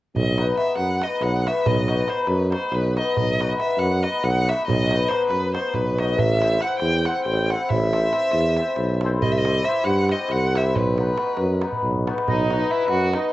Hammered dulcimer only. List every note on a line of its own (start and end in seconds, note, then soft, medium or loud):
0.38 0.53 B3 medium
0.38 0.53 D#4 medium
0.38 0.53 F#4 medium
0.38 0.54 B4 medium
0.57 0.72 B3 medium
0.57 0.72 D#4 medium
0.57 0.72 F#4 soft
0.57 0.73 B4 medium
1.01 1.17 B3 medium
1.01 1.17 D#4 soft
1.01 1.17 F#4 soft
1.01 1.18 B4 medium
1.46 1.62 B3 medium
1.46 1.62 D#4 medium
1.46 1.62 F#4 medium
1.46 1.62 B4 medium
1.88 2.03 B3 medium
1.88 2.04 D#4 medium
1.88 2.04 F#4 medium
1.88 2.04 B4 medium
2.08 2.23 B3 medium
2.08 2.23 D#4 medium
2.08 2.24 F#4 medium
2.08 2.24 B4 medium
2.51 2.67 B3 medium
2.51 2.67 D#4 soft
2.51 2.68 F#4 medium
2.51 2.68 B4 medium
2.97 3.13 B3 medium
2.97 3.13 D#4 medium
2.97 3.13 F#4 medium
2.97 3.14 B4 medium
3.40 3.55 B3 medium
3.40 3.55 D#4 medium
3.40 3.55 F#4 medium
3.40 3.56 B4 medium
3.58 3.74 B3 medium
3.58 3.74 D#4 medium
3.58 3.74 F#4 soft
3.58 3.75 B4 medium
4.02 4.19 B3 medium
4.02 4.19 D#4 soft
4.02 4.19 F#4 medium
4.02 4.20 B4 medium
4.48 4.64 B3 medium
4.48 4.64 D#4 medium
4.48 4.65 F#4 medium
4.48 4.65 B4 medium
4.90 5.06 B3 medium
4.90 5.06 D#4 medium
4.90 5.07 F#4 medium
4.90 5.07 B4 medium
5.09 5.25 B3 medium
5.09 5.25 D#4 soft
5.09 5.26 F#4 medium
5.09 5.26 B4 medium
5.53 5.70 B3 medium
5.53 5.70 D#4 medium
5.53 5.71 F#4 medium
5.53 5.71 B4 medium
5.99 6.15 B3 medium
5.99 6.16 D#4 medium
5.99 6.16 F#4 medium
5.99 6.16 B4 medium
6.42 6.58 C4 medium
6.42 6.58 E4 medium
6.42 6.58 A4 medium
6.42 6.59 C5 medium
6.62 6.77 C4 medium
6.62 6.77 E4 soft
6.62 6.78 A4 soft
6.62 6.78 C5 medium
7.06 7.22 C4 soft
7.06 7.22 E4 medium
7.06 7.22 A4 soft
7.06 7.23 C5 medium
7.50 7.67 C4 medium
7.50 7.67 E4 medium
7.50 7.68 A4 medium
7.50 7.68 C5 medium
7.93 8.09 C4 medium
7.93 8.09 E4 soft
7.93 8.10 A4 medium
7.93 8.10 C5 medium
8.13 8.29 C4 medium
8.13 8.29 E4 soft
8.13 8.29 A4 medium
8.13 8.30 C5 medium
8.58 8.74 C4 medium
8.58 8.74 E4 medium
8.58 8.75 A4 medium
8.58 8.75 C5 medium
9.04 9.20 C4 medium
9.04 9.20 E4 medium
9.04 9.20 A4 medium
9.04 9.20 C5 medium
9.47 9.62 C4 medium
9.47 9.62 E4 medium
9.47 9.63 G4 medium
9.47 9.63 C5 medium
9.67 9.82 C4 medium
9.67 9.82 E4 medium
9.67 9.82 G4 soft
9.67 9.82 C5 medium
10.11 10.27 C4 medium
10.11 10.27 E4 soft
10.11 10.27 G4 medium
10.11 10.27 C5 medium
10.55 10.71 C4 medium
10.55 10.71 E4 medium
10.55 10.71 G4 medium
10.55 10.72 C5 medium
10.99 11.14 B3 medium
10.99 11.14 D#4 medium
10.99 11.14 F#4 medium
10.99 11.15 B4 medium
11.18 11.33 B3 soft
11.18 11.34 D#4 medium
11.18 11.34 F#4 medium
11.18 11.34 B4 medium
11.62 11.78 B3 medium
11.62 11.78 D#4 medium
11.62 11.78 F#4 medium
11.62 11.79 B4 medium
12.07 12.23 B3 medium
12.07 12.23 D#4 medium
12.07 12.23 F#4 medium
12.07 12.24 B4 medium
12.50 12.65 B3 medium
12.50 12.65 D#4 medium
12.50 12.66 F#4 medium
12.50 12.66 B4 medium
12.69 12.84 B3 medium
12.69 12.85 D#4 soft
12.69 12.85 F#4 medium
12.69 12.85 B4 medium
13.14 13.30 B3 medium
13.14 13.30 D#4 medium
13.14 13.30 F#4 medium
13.14 13.30 B4 medium